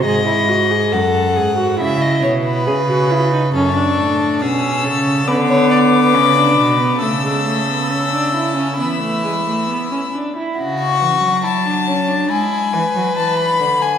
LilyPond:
<<
  \new Staff \with { instrumentName = "Violin" } { \time 4/4 \key cis \minor \tempo 4 = 69 r1 | \key a \major cis'''4 e'''4 d'''2 | e'''2 e'''4. r8 | r16 cis'''8. a''4 gis''4 a''16 b''8 gis''16 | }
  \new Staff \with { instrumentName = "Violin" } { \time 4/4 \key cis \minor dis''4 fis''4 e''16 dis''16 cis''16 b'4~ b'16 | \key a \major a'4 gis'8 a'8 b'16 cis''16 d''16 b'4~ b'16 | a'2 e'4. r8 | fis'4 e'16 d'16 cis'16 d'16 e'8 b'4. | }
  \new Staff \with { instrumentName = "Viola" } { \time 4/4 \key cis \minor gis'16 e'16 fis'16 gis'16 a'8 gis'16 fis'16 e'4 gis'16 fis'16 e'16 dis'16 | \key a \major cis'16 d'8. cis'4 b4 cis'16 d'8 b16 | a16 gis16 a16 b16 cis'16 d'16 e'16 cis'16 b16 a16 gis16 a16 b16 cis'16 d'16 e'16 | r1 | }
  \new Staff \with { instrumentName = "Cello" } { \clef bass \time 4/4 \key cis \minor gis,4 fis,8 gis,8 cis8 b,8 cis4 | \key a \major fis,8 a,8 b,8 cis8 d4 cis8 b,8 | cis2 e4. r8 | cis8 e16 fis4~ fis16 gis8 e16 fis16 e8 d8 | }
>>